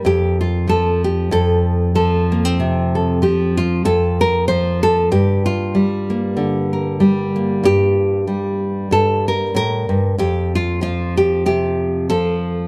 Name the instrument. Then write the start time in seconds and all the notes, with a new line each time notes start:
nylon-string guitar
Already playing: A#3
0.05 F2 G4
0.41 F4
0.68 F3 A4
1.04 G4
1.31 F2 A4
1.95 F3 A4
2.32 A#3
2.45 C4
2.60 C3
2.95 A4
3.22 F3 G4
3.57 F4
3.85 F2 A4
4.21 A#4
4.48 F3 C5
4.83 A4
5.12 G2 G4
5.46 F4
5.75 G3
6.10 A#3
6.37 D3
6.73 A#4
7.00 G3
7.36 A#3
7.63 G2 G4
8.27 G3
8.91 G2 A4
9.28 A#4
9.55 A2 A#4
9.89 G2
10.18 F2 G4
10.55 F4
10.81 F3 F4
11.17 G4
11.46 C3 G4
12.10 F3 A4